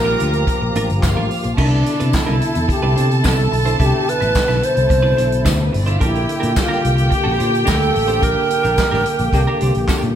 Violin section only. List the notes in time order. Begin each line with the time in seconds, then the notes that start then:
Already playing: A#4 A#5
1.03 F4 F5
1.58 A4 A5
5.60 A3 A4
5.65 B3 B4
5.72 C4 C5
5.79 D4 D5
5.86 E4 E5
5.93 F4 F5
6.00 G4 G5